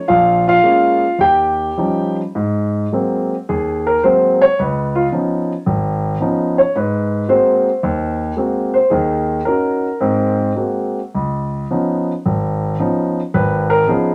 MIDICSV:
0, 0, Header, 1, 2, 480
1, 0, Start_track
1, 0, Tempo, 563910
1, 72, Time_signature, 4, 2, 24, 8
1, 3435, Tempo, 542495
1, 7755, Tempo, 557621
1, 10635, Tempo, 537634
1, 12316, End_track
2, 0, Start_track
2, 0, Title_t, "Grand piano"
2, 0, Program_c, 0, 0
2, 66, Note_on_c, 0, 65, 71
2, 71, Note_on_c, 0, 77, 81
2, 80, Note_on_c, 0, 34, 70
2, 367, Note_off_c, 0, 65, 0
2, 370, Note_off_c, 0, 77, 0
2, 405, Note_on_c, 0, 65, 78
2, 415, Note_on_c, 0, 77, 96
2, 483, Note_off_c, 0, 34, 0
2, 541, Note_on_c, 0, 56, 52
2, 545, Note_on_c, 0, 58, 44
2, 547, Note_on_c, 0, 61, 50
2, 883, Note_off_c, 0, 56, 0
2, 885, Note_off_c, 0, 58, 0
2, 886, Note_off_c, 0, 61, 0
2, 988, Note_off_c, 0, 65, 0
2, 1009, Note_on_c, 0, 39, 58
2, 1027, Note_on_c, 0, 67, 69
2, 1029, Note_on_c, 0, 79, 90
2, 1045, Note_off_c, 0, 77, 0
2, 1445, Note_off_c, 0, 39, 0
2, 1511, Note_on_c, 0, 53, 46
2, 1513, Note_on_c, 0, 55, 42
2, 1517, Note_on_c, 0, 63, 50
2, 1518, Note_on_c, 0, 61, 42
2, 1829, Note_off_c, 0, 67, 0
2, 1830, Note_off_c, 0, 79, 0
2, 1872, Note_off_c, 0, 53, 0
2, 1873, Note_off_c, 0, 55, 0
2, 1874, Note_off_c, 0, 63, 0
2, 1875, Note_off_c, 0, 61, 0
2, 2002, Note_on_c, 0, 44, 70
2, 2424, Note_off_c, 0, 44, 0
2, 2487, Note_on_c, 0, 54, 46
2, 2492, Note_on_c, 0, 56, 47
2, 2492, Note_on_c, 0, 58, 48
2, 2498, Note_on_c, 0, 60, 51
2, 2833, Note_off_c, 0, 54, 0
2, 2835, Note_off_c, 0, 56, 0
2, 2836, Note_off_c, 0, 58, 0
2, 2838, Note_off_c, 0, 60, 0
2, 2970, Note_on_c, 0, 68, 75
2, 2974, Note_on_c, 0, 39, 68
2, 3284, Note_off_c, 0, 68, 0
2, 3292, Note_on_c, 0, 70, 79
2, 3381, Note_off_c, 0, 39, 0
2, 3432, Note_off_c, 0, 70, 0
2, 3434, Note_on_c, 0, 72, 70
2, 3440, Note_on_c, 0, 54, 50
2, 3440, Note_on_c, 0, 56, 45
2, 3445, Note_on_c, 0, 58, 43
2, 3448, Note_on_c, 0, 60, 51
2, 3760, Note_off_c, 0, 72, 0
2, 3771, Note_on_c, 0, 73, 92
2, 3789, Note_off_c, 0, 54, 0
2, 3789, Note_off_c, 0, 56, 0
2, 3791, Note_off_c, 0, 58, 0
2, 3792, Note_off_c, 0, 60, 0
2, 3917, Note_off_c, 0, 73, 0
2, 3928, Note_on_c, 0, 37, 70
2, 3931, Note_on_c, 0, 71, 62
2, 4247, Note_on_c, 0, 65, 77
2, 4250, Note_off_c, 0, 71, 0
2, 4339, Note_off_c, 0, 65, 0
2, 4346, Note_off_c, 0, 37, 0
2, 4395, Note_on_c, 0, 53, 50
2, 4396, Note_on_c, 0, 59, 41
2, 4399, Note_on_c, 0, 61, 44
2, 4403, Note_on_c, 0, 63, 53
2, 4744, Note_off_c, 0, 53, 0
2, 4745, Note_off_c, 0, 59, 0
2, 4746, Note_off_c, 0, 61, 0
2, 4748, Note_off_c, 0, 63, 0
2, 4876, Note_on_c, 0, 32, 75
2, 5295, Note_off_c, 0, 32, 0
2, 5354, Note_on_c, 0, 53, 52
2, 5357, Note_on_c, 0, 59, 45
2, 5363, Note_on_c, 0, 63, 59
2, 5364, Note_on_c, 0, 61, 49
2, 5688, Note_on_c, 0, 73, 75
2, 5703, Note_off_c, 0, 53, 0
2, 5705, Note_off_c, 0, 59, 0
2, 5708, Note_off_c, 0, 61, 0
2, 5708, Note_off_c, 0, 63, 0
2, 5834, Note_off_c, 0, 73, 0
2, 5843, Note_on_c, 0, 44, 67
2, 5850, Note_on_c, 0, 71, 67
2, 6260, Note_off_c, 0, 44, 0
2, 6291, Note_off_c, 0, 71, 0
2, 6311, Note_on_c, 0, 56, 53
2, 6312, Note_on_c, 0, 60, 49
2, 6313, Note_on_c, 0, 66, 61
2, 6314, Note_on_c, 0, 58, 48
2, 6315, Note_on_c, 0, 72, 70
2, 6661, Note_off_c, 0, 56, 0
2, 6661, Note_off_c, 0, 60, 0
2, 6662, Note_off_c, 0, 66, 0
2, 6663, Note_off_c, 0, 58, 0
2, 6795, Note_on_c, 0, 39, 77
2, 7091, Note_off_c, 0, 72, 0
2, 7214, Note_off_c, 0, 39, 0
2, 7267, Note_on_c, 0, 56, 47
2, 7272, Note_on_c, 0, 58, 48
2, 7276, Note_on_c, 0, 60, 45
2, 7278, Note_on_c, 0, 66, 52
2, 7595, Note_on_c, 0, 72, 71
2, 7617, Note_off_c, 0, 56, 0
2, 7620, Note_off_c, 0, 58, 0
2, 7622, Note_off_c, 0, 60, 0
2, 7623, Note_off_c, 0, 66, 0
2, 7740, Note_on_c, 0, 68, 66
2, 7745, Note_off_c, 0, 72, 0
2, 7751, Note_on_c, 0, 39, 68
2, 7751, Note_on_c, 0, 51, 71
2, 8163, Note_off_c, 0, 39, 0
2, 8164, Note_off_c, 0, 51, 0
2, 8185, Note_off_c, 0, 68, 0
2, 8215, Note_on_c, 0, 70, 75
2, 8227, Note_on_c, 0, 61, 48
2, 8234, Note_on_c, 0, 66, 49
2, 8235, Note_on_c, 0, 63, 44
2, 8569, Note_off_c, 0, 61, 0
2, 8572, Note_off_c, 0, 63, 0
2, 8572, Note_off_c, 0, 66, 0
2, 8691, Note_on_c, 0, 60, 67
2, 8697, Note_on_c, 0, 44, 68
2, 8993, Note_off_c, 0, 70, 0
2, 9117, Note_off_c, 0, 60, 0
2, 9120, Note_off_c, 0, 44, 0
2, 9169, Note_on_c, 0, 56, 47
2, 9169, Note_on_c, 0, 60, 41
2, 9171, Note_on_c, 0, 58, 42
2, 9177, Note_on_c, 0, 66, 51
2, 9532, Note_off_c, 0, 56, 0
2, 9532, Note_off_c, 0, 60, 0
2, 9533, Note_off_c, 0, 58, 0
2, 9536, Note_off_c, 0, 66, 0
2, 9673, Note_on_c, 0, 37, 61
2, 10098, Note_off_c, 0, 37, 0
2, 10155, Note_on_c, 0, 53, 49
2, 10155, Note_on_c, 0, 59, 47
2, 10161, Note_on_c, 0, 61, 49
2, 10162, Note_on_c, 0, 63, 51
2, 10502, Note_off_c, 0, 53, 0
2, 10502, Note_off_c, 0, 59, 0
2, 10504, Note_off_c, 0, 61, 0
2, 10505, Note_off_c, 0, 63, 0
2, 10629, Note_on_c, 0, 32, 70
2, 11054, Note_off_c, 0, 32, 0
2, 11110, Note_on_c, 0, 53, 52
2, 11113, Note_on_c, 0, 59, 44
2, 11117, Note_on_c, 0, 61, 44
2, 11117, Note_on_c, 0, 63, 55
2, 11462, Note_off_c, 0, 53, 0
2, 11463, Note_off_c, 0, 59, 0
2, 11465, Note_off_c, 0, 61, 0
2, 11465, Note_off_c, 0, 63, 0
2, 11597, Note_on_c, 0, 32, 70
2, 11598, Note_on_c, 0, 71, 81
2, 11916, Note_on_c, 0, 70, 93
2, 11920, Note_off_c, 0, 71, 0
2, 12016, Note_off_c, 0, 32, 0
2, 12067, Note_off_c, 0, 70, 0
2, 12075, Note_on_c, 0, 53, 54
2, 12079, Note_on_c, 0, 59, 52
2, 12082, Note_on_c, 0, 68, 70
2, 12084, Note_on_c, 0, 63, 57
2, 12085, Note_on_c, 0, 61, 49
2, 12316, Note_off_c, 0, 53, 0
2, 12316, Note_off_c, 0, 59, 0
2, 12316, Note_off_c, 0, 61, 0
2, 12316, Note_off_c, 0, 63, 0
2, 12316, Note_off_c, 0, 68, 0
2, 12316, End_track
0, 0, End_of_file